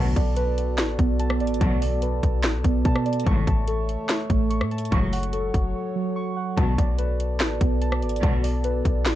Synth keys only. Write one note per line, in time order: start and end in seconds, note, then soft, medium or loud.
0.00 1.18 A5 loud
0.17 1.40 D5 medium
0.36 1.61 B4 medium
0.99 2.23 B3 medium
1.20 1.61 A5 loud
1.41 1.80 D5 medium
1.62 2.84 A5 loud
1.81 3.04 D5 medium
2.02 3.26 B4 medium
2.64 3.26 B3 medium
2.85 3.27 A5 loud
3.06 3.26 D5 medium
3.27 4.49 C#6 loud
3.48 4.70 A5 medium
3.68 4.92 A4 medium
4.30 4.92 A3 medium
4.50 4.91 C#6 loud
4.71 4.92 A5 medium
4.92 6.15 C#6 loud
5.13 6.35 F#5 medium
5.33 6.57 A4 medium
5.96 6.58 F#3 medium
6.16 6.57 C#6 loud
6.37 6.57 F#5 medium
6.57 7.80 A5 loud
6.79 8.02 D5 medium
6.98 8.23 B4 medium
7.61 8.85 B3 medium
7.82 8.23 A5 loud
8.03 8.42 D5 medium
8.24 9.15 A5 loud
8.43 9.15 D5 medium
8.64 9.15 B4 medium